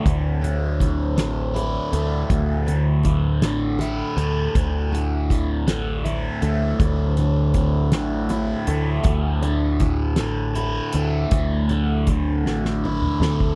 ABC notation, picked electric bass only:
X:1
M:6/8
L:1/8
Q:3/8=53
K:Clyd
V:1 name="Picked electric bass" clef=bass
D,,3 A,,,2 D,, | D,,3 A,,,2 D,, | D,,3 A,,,2 D,, | D,,3 A,,,2 D,, |
D,,3 A,,,2 D,, | D,,3 A,,,2 D,, |]